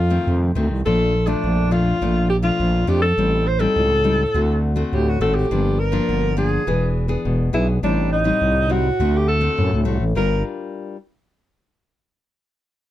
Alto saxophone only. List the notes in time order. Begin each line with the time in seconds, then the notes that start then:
Already playing: F4
0.86 A4
1.27 D4
1.72 F4
2.30 G4
2.43 F4
2.88 G4
3.02 A4
3.47 C5
3.59 A4
4.93 G4
5.09 F#4
5.21 A4
5.35 G4
5.79 A#4
6.38 G#4
7.54 E4
7.84 D4
8.12 D#4
8.71 F#4
9.17 G4
9.28 A4
10.17 A#4